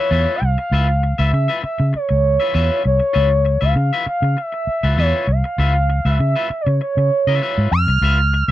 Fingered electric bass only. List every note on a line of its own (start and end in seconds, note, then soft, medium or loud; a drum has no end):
0.11 0.25 E2 medium
0.42 0.56 C2 medium
0.71 1.12 C#2 loud
1.19 1.31 C#2 medium
1.33 1.47 C#3 loud
1.64 muted fingered electric bass stroke soft
1.80 1.92 C#3 medium
1.95 muted fingered electric bass stroke soft
2.10 2.37 C#2 medium
2.55 2.69 E2 medium
2.85 2.99 C2 medium
3.16 3.56 C#2 loud
3.62 3.74 C#2 medium
3.76 3.90 C#3 loud
4.06 muted fingered electric bass stroke soft
4.22 4.35 C#3 medium
4.67 muted fingered electric bass stroke soft
4.83 4.96 C#2 medium
4.98 5.12 E2 medium
5.27 5.42 C2 medium
5.58 5.99 C#2 loud
6.05 6.18 C#2 medium
6.20 6.34 C#3 loud
6.50 muted fingered electric bass stroke soft
6.67 6.79 C#3 medium
6.97 7.09 C#3 medium
7.27 7.39 C#3 medium
7.58 7.70 G#2 medium
7.72 7.86 F2 medium
7.87 8.00 C2 medium
8.01 8.42 C#2 loud
8.48 8.52 C#2 medium